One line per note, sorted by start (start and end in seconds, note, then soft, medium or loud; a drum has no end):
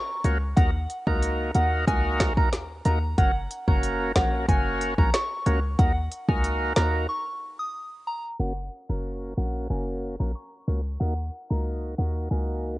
0.00 0.39 C#6 medium
0.24 0.54 C#2 loud
0.24 0.38 A#3 medium
0.24 0.38 C#4 medium
0.24 0.38 F#4 medium
0.24 0.38 A#4 medium
0.24 closed hi-hat medium
0.57 0.87 D#2 loud
0.57 0.70 A#3 medium
0.57 0.71 D#4 medium
0.57 0.71 F#4 medium
0.57 0.71 A#4 loud
0.57 0.69 F#5 loud
0.57 kick loud
0.57 closed hi-hat medium
0.90 closed hi-hat medium
1.07 1.51 C#2 medium
1.07 1.51 A#3 medium
1.07 1.51 D#4 medium
1.07 1.51 F#4 medium
1.07 1.52 A#4 medium
1.07 1.18 A#5 medium
1.07 kick medium
1.22 closed hi-hat medium
1.55 1.85 D#2 medium
1.55 1.85 A#3 medium
1.55 1.85 D#4 medium
1.55 1.85 F#4 medium
1.55 1.85 A#4 medium
1.55 1.67 F#5 medium
1.55 closed hi-hat medium
1.87 2.39 C#2 loud
1.87 2.33 A#3 loud
1.87 2.33 D#4 medium
1.87 2.33 F#4 medium
1.87 2.33 A#4 loud
1.87 1.99 G#5 medium
1.87 kick medium
1.87 closed hi-hat medium
2.20 kick medium
2.20 cross-stick medium
2.20 snare loud
2.20 closed hi-hat medium
2.37 2.81 D#2 medium
2.37 2.49 A#3 medium
2.37 2.49 D#4 medium
2.37 2.50 F#4 medium
2.37 2.50 A#4 medium
2.37 2.48 A#5 medium
2.37 kick loud
2.53 snare medium
2.53 closed hi-hat medium
2.85 3.15 D#2 loud
2.85 2.99 A#3 medium
2.85 2.99 D#4 medium
2.85 2.99 F#4 medium
2.85 2.99 A#4 medium
2.85 2.97 A#5 medium
2.85 closed hi-hat medium
3.18 3.48 F#1 medium
3.18 3.31 A#3 loud
3.18 3.32 C#4 medium
3.18 3.32 F#4 medium
3.18 3.32 A#4 loud
3.18 3.30 F#5 loud
3.18 kick loud
3.18 closed hi-hat medium
3.51 closed hi-hat medium
3.68 4.12 F#1 medium
3.68 4.12 A#3 medium
3.68 4.12 C#4 medium
3.68 4.12 F#4 medium
3.68 4.12 A#4 medium
3.68 3.79 A#5 medium
3.68 kick medium
3.83 closed hi-hat medium
4.16 4.46 A#1 loud
4.16 4.46 A#3 medium
4.16 4.46 C#4 medium
4.16 4.46 F#4 medium
4.16 4.46 A#4 medium
4.16 4.28 F#5 medium
4.16 kick loud
4.16 cross-stick loud
4.16 snare loud
4.16 closed hi-hat medium
4.48 4.94 F#1 loud
4.48 4.94 A#3 medium
4.48 4.94 C#4 medium
4.48 4.94 F#4 medium
4.48 4.94 A#4 loud
4.48 4.60 G#5 medium
4.48 kick loud
4.48 closed hi-hat medium
4.81 closed hi-hat medium
4.98 5.12 A#1 loud
4.98 5.10 A#3 medium
4.98 5.10 C#4 medium
4.98 5.10 F#4 medium
4.98 5.10 A#4 medium
4.98 5.09 A#5 medium
4.98 kick loud
5.14 5.61 C#6 medium
5.14 cross-stick loud
5.14 snare loud
5.14 closed hi-hat medium
5.46 5.76 C#2 loud
5.46 5.60 A#3 medium
5.46 5.60 C#4 medium
5.46 5.60 F#4 medium
5.46 5.60 A#4 loud
5.46 closed hi-hat medium
5.79 6.09 D#2 loud
5.79 5.92 A#3 medium
5.79 5.92 D#4 medium
5.79 5.92 F#4 medium
5.79 5.92 A#4 loud
5.79 5.91 F#5 loud
5.79 kick loud
5.79 closed hi-hat medium
6.12 closed hi-hat medium
6.29 6.73 C#2 medium
6.29 6.73 A#3 medium
6.29 6.73 D#4 medium
6.29 6.73 F#4 medium
6.29 6.73 A#4 medium
6.29 6.39 G#5 medium
6.29 kick medium
6.44 closed hi-hat medium
6.76 7.06 D#2 loud
6.76 7.07 A#3 medium
6.76 7.07 D#4 medium
6.76 7.07 F#4 medium
6.76 7.07 A#4 medium
6.76 6.88 A#5 medium
6.76 cross-stick loud
6.76 snare loud
6.76 closed hi-hat medium
7.09 7.21 C#6 medium
7.59 7.70 D#6 medium
8.07 8.19 A#5 medium
8.39 8.69 F#1 medium
8.39 8.53 A#3 medium
8.39 8.53 C#4 medium
8.39 8.53 F#4 medium
8.39 8.53 A#4 medium
8.39 8.52 F#5 loud
8.89 9.34 F#1 medium
8.89 9.34 A#3 medium
8.89 9.34 C#4 medium
8.89 9.34 F#4 medium
8.89 9.34 A#4 medium
8.89 9.00 A#5 medium
9.37 9.67 A#1 medium
9.37 9.67 A#3 medium
9.37 9.68 C#4 medium
9.37 9.68 F#4 medium
9.37 9.68 A#4 medium
9.37 9.50 F#5 medium
9.70 10.16 F#1 loud
9.70 10.16 A#3 medium
9.70 10.16 C#4 medium
9.70 10.16 F#4 medium
9.70 10.16 A#4 medium
9.70 9.82 G#5 medium
10.20 10.34 A#1 medium
10.20 10.32 A#3 medium
10.20 10.32 C#4 medium
10.20 10.32 F#4 medium
10.20 10.32 A#4 medium
10.20 10.30 A#5 medium
10.35 10.82 C#6 medium
10.68 10.98 C#2 loud
10.68 10.81 A#3 medium
10.68 10.81 C#4 medium
10.68 10.81 F#4 medium
10.68 10.82 A#4 medium
11.00 11.30 D#2 medium
11.00 11.14 A#3 medium
11.00 11.14 D#4 medium
11.00 11.14 F#4 medium
11.00 11.14 A#4 loud
11.00 11.12 F#5 loud
11.50 11.95 C#2 medium
11.50 11.95 A#3 medium
11.50 11.95 D#4 medium
11.50 11.95 F#4 medium
11.50 11.95 A#4 medium
11.50 11.61 A#5 medium
11.98 12.28 D#2 medium
11.98 12.29 A#3 medium
11.98 12.29 D#4 medium
11.98 12.29 F#4 medium
11.98 12.29 A#4 medium
11.98 12.10 F#5 medium
12.31 12.79 C#2 loud
12.31 12.77 A#3 medium
12.31 12.77 D#4 medium
12.31 12.77 F#4 medium
12.31 12.77 A#4 loud
12.31 12.43 G#5 medium